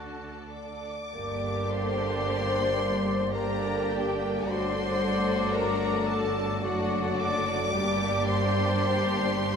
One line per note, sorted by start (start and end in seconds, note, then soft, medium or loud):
0.00 0.92 D2 soft
0.00 0.92 D3 soft
0.00 0.53 D4 soft
0.00 0.88 D4 soft
0.00 0.54 F#4 soft
0.00 0.88 A4 soft
0.00 0.51 A5 soft
0.54 1.72 D5 soft
0.54 1.66 D5 soft
0.54 1.68 D6 soft
1.12 4.44 G1 soft
1.12 4.45 G2 soft
1.12 3.29 D3 soft
1.12 3.29 A#3 soft
1.12 3.30 A#3 soft
1.12 3.30 D4 soft
1.12 3.30 G4 soft
1.12 3.29 D5 soft
1.12 3.30 D5 soft
1.69 3.34 C5 medium
1.69 3.33 C6 medium
3.32 4.46 D3 soft
3.32 4.46 A#3 soft
3.32 4.50 A#3 soft
3.32 4.45 D4 soft
3.32 4.46 G4 soft
3.32 3.91 A#4 medium
3.32 3.91 A#4 soft
3.32 4.46 D5 soft
3.32 3.89 A#5 medium
3.89 4.47 G4 soft
3.89 4.49 G4 medium
3.89 4.49 G5 medium
4.46 6.59 G1 soft
4.46 6.59 G2 medium
4.46 6.59 D3 soft
4.46 6.63 F#3 soft
4.46 6.62 A3 soft
4.46 6.62 A3 medium
4.46 6.58 D4 medium
4.46 6.62 F#4 medium
4.46 5.54 C5 medium
4.46 5.53 C5 medium
4.46 6.58 D5 soft
4.46 6.59 D5 soft
4.46 5.55 C6 medium
5.53 6.05 A#4 medium
5.53 6.07 A#4 medium
5.53 6.06 A#5 medium
6.06 6.61 A4 medium
6.06 6.63 A4 medium
6.06 6.63 A5 medium
6.61 7.76 F#1 soft
6.61 7.76 F#2 medium
6.61 7.74 D3 medium
6.61 7.79 F#3 medium
6.61 7.74 A3 medium
6.61 7.74 A3 soft
6.61 7.74 D4 medium
6.61 7.23 F#4 medium
6.61 7.74 F#4 medium
6.61 7.00 F#4 medium
6.61 7.59 D5 medium
6.61 7.57 D5 medium
6.61 7.22 F#5 medium
7.21 8.27 D5 medium
7.21 8.28 D5 medium
7.21 8.27 D6 medium
7.74 9.56 G1 medium
7.74 9.56 G2 medium
7.74 9.56 G3 medium
7.74 9.56 A#3 medium
7.74 9.56 D4 medium
7.74 9.56 G4 medium
7.74 9.53 D5 medium
7.74 9.54 D5 medium
8.28 9.55 C5 medium
8.28 9.56 C5 medium
8.28 9.56 C6 medium